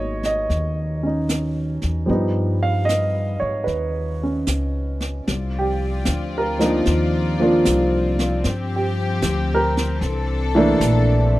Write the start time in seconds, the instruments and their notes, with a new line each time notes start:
Already playing: upright bass G#1, grand piano F#3 A#3 B3 D#4 C#5 D#5
0.23 grand piano D#5, snare
0.50 upright bass D#2, brush sweep, snare
1.03 grand piano C#4 D#4
1.29 snare, hi-hat pedal
1.82 upright bass E2, snare
2.06 upright bass G2, grand piano F3 G3 B3, brush sweep
2.10 grand piano D#4
2.63 grand piano F5
2.85 grand piano D#5, snare, hi-hat pedal
3.40 upright bass G#2, grand piano C#5
3.64 upright bass D#2, grand piano B4, brush sweep, snare
4.23 grand piano C#4
4.47 upright bass C#2, snare, hi-hat pedal
5.01 snare
5.26 upright bass C2, string section F3 C4 F4 D5, brush sweep, snare
5.59 grand piano G4
6.05 upright bass D2, snare, hi-hat pedal
6.38 grand piano A#4
6.59 grand piano F3 A#3 D4 D#4, snare
6.86 upright bass D#2, brush sweep, snare
7.40 grand piano F3 A#3 D4 F4
7.65 upright bass C2, snare, hi-hat pedal
8.19 snare
8.43 upright bass G2, string section F3 G4, brush sweep, snare
8.76 grand piano G4
9.22 upright bass D2, snare, hi-hat pedal
9.55 grand piano A#4
9.77 snare
9.99 upright bass C2, string section E3 D4 A4, brush sweep, snare
10.55 grand piano E3 A3 A#3 D4
10.80 upright bass A#1, snare, hi-hat pedal